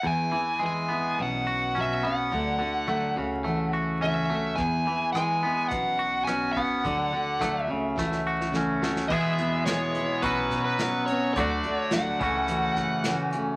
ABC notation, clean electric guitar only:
X:1
M:4/4
L:1/8
Q:1/4=106
K:E
V:1 name="Clean electric guitar"
E,, E, G, B, B,, F C B, | =D, D, A, C, A, F C A, | E,, E, G, B, B,, F C B, | =D, D, A, C, A, F C A, |
[E,,B,,E,G,B,G]4 [B,,F,B,CF]4 | [=D,A,=DF]3 [C,E,A,CF]4- [C,E,A,CF] |]